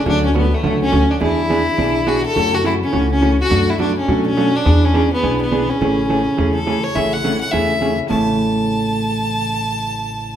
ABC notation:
X:1
M:4/4
L:1/8
Q:"Swing" 1/4=209
K:A
V:1 name="Fiddle"
D C B, A,2 C2 D | E6 F A- | A F E C2 C2 F- | F E D C2 C2 D- |
D C2 B,2 B,2 C- | C4- C A2 c | e f2 f e3 z | a8- |
a8 |]
V:2 name="Hollow-body jazz guitar"
[D,F,A,CF] z [D,F,A,CF] z [D,F,A,CF] z [D,F,A,CF] z | [E,B,DG] z [E,B,DG] z [E,B,DG] z [E,B,DG] z | [C,E,A,CF] z [C,E,A,CF] z [C,E,A,CF] z [C,E,A,CF] z | [B,,F,A,DF] z [B,,F,A,DF] z [B,,F,A,DF] z [B,,F,A,DF] z |
[E,B,DG] z [E,B,DG] z [E,B,DG] z [E,B,DG] z | [C,E,A,CG] z [C,E,A,CG] z [C,E,A,CG] z [C,E,A,CG] z | [C,E,A,CG] z [C,E,A,CG] z [C,E,A,CG] z [C,E,A,CG] z | [A,,C,E,A,C]8- |
[A,,C,E,A,C]8 |]
V:3 name="Upright bass" clef=bass
D,,4 C,,2 D,,2 | E,,4 B,,,4 | F,,4 C,,4 | F,,4 B,,4 |
E,,4 B,,,4 | A,,,4 E,,4 | A,,,4 E,,4 | A,,,8- |
A,,,8 |]